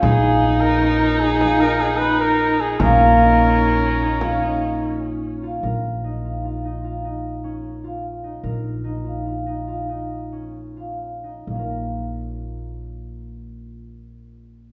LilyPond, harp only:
\new Staff \with { instrumentName = "Harp" } { \time 7/4 \key bes \phrygian \tempo 4 = 149 ces'8 f'8 ees'4 des'8 des'8 ees'8 f'8 ees'4 des'4 r8 ees'8 | bes8 f'8 ees'4 des'8 des'8 ees'8 f'8 ees'4 des'4 r8 f'8 | bes'4 ees'8 f'8 f'8 ees'8 f'8 ees'4 des'4 f'4 ees'8 | bes'4 ees'8 f'8 f'8 ees'8 f'8 ees'4 des'4 f'4 ees'8 |
<bes des' f' bes'>1.~ <bes des' f' bes'>4 | }